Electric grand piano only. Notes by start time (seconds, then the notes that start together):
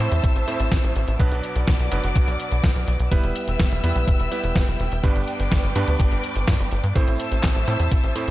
0.00 A2 A3 C4 E4 C5
0.48 A2 A3 C4 E4 C5
1.20 B2 F#3 B3 D4 B4
1.91 B2 F#3 B3 D4 B4
3.11 G3 B3 E4 B4
3.84 G3 B3 E4 B4
4.32 G3 B3 E4 B4
5.04 G2 G3 B3 D4 B4
5.75 G2 G3 B3 D4 B4
6.95 A2 A3 C4 E4 C5
7.67 A2 A3 C4 E4 C5
8.15 A2 A3 C4 E4 C5